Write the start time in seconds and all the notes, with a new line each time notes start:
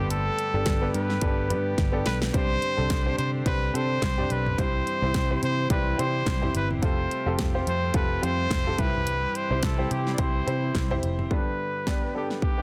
Already playing: G1 G2 D3 G3 A3 B3 D4 G4 A4
0.10 A4, closed hi-hat
0.39 closed hi-hat
0.54 G1 B3 D4 G4 A4
0.66 G1, kick, snare, clap, closed hi-hat
0.82 B3 D4 G4 B4
0.94 G2 B4, closed hi-hat
1.10 snare
1.21 G1 B3 D4 G4 A4, kick, closed hi-hat
1.49 G2 B3 D4 G4 B4, closed hi-hat
1.78 G1, kick, snare, closed hi-hat
1.92 B3 D4 G4 A4
2.06 B1 B4, snare, closed hi-hat
2.22 snare
2.34 C2 G2 C3 C4 D4 G4 C5, kick, closed hi-hat
2.62 closed hi-hat
2.77 C2 C4 D4 G4 A4
2.90 kick, snare, clap, closed hi-hat
3.05 C4 D4 G4 C5
3.18 C3 C5, closed hi-hat
3.46 C2 C4 D4 G4 B4 C5, kick, closed hi-hat
3.74 C3 C4 D4 G4 A4 C5, closed hi-hat
4.02 C2, kick, snare, clap, closed hi-hat
4.18 C4 D4 G4 D5, floor tom
4.30 B1 B4, closed hi-hat
4.46 floor tom
4.58 C2 G2 E3 C4 E4 G4 C5, kick, closed hi-hat
4.87 closed hi-hat
5.02 C2 C4 E4 G4 C5
5.14 C2, kick, snare, clap, closed hi-hat
5.30 C4 E4 G4 C5
5.43 C3 C5, closed hi-hat
5.70 C2 C4 E4 G4 B4 D5, kick, closed hi-hat
5.98 C3 C4 E4 G4 C5, closed hi-hat
6.26 C2, kick, snare, clap, closed hi-hat
6.42 C4 E4 G4 C5, floor tom
6.54 G1 B4, closed hi-hat
6.71 floor tom
6.81 F1 C3 G3 A3 C4 F4 G4 A4 C5, kick, closed hi-hat
7.11 closed hi-hat
7.26 F1 C4 F4 G4 A4
7.39 F1, kick, snare, clap, closed hi-hat
7.54 C4 F4 G4 C5
7.67 F2 C5, closed hi-hat
7.94 F1 C4 F4 G4 A4 B4, kick, closed hi-hat
8.22 F2 C4 F4 G4 C5, closed hi-hat
8.51 F1, kick, snare, clap, closed hi-hat
8.66 C4 F4 G4 A4, floor tom
8.78 C2 G2 C3 E3 C4 E4 G4 B4 E5, kick, closed hi-hat
8.95 floor tom
9.07 closed hi-hat
9.35 C5, closed hi-hat
9.50 C2 C4 E4 G4 C5
9.63 C2 A4, kick, snare, clap, closed hi-hat
9.78 C4 E4 G4 C5
9.91 C3 G4, closed hi-hat
10.07 snare
10.14 D5
10.18 C2 C4 E4 G4 C5, kick, closed hi-hat
10.47 C3 C4 E4 G4 C5, closed hi-hat
10.75 C2, kick, snare, clap, closed hi-hat
10.90 C4 E4 G4 C5, floor tom
11.03 F1, closed hi-hat
11.19 floor tom
11.30 G2 D3 G3 B3 D4 G4 B4, kick
11.87 B3 D4 G4 D5, kick, snare, clap
12.15 B3 D4 G4 A4
12.30 snare
12.42 G4, kick
12.58 B3 D4 G4 D5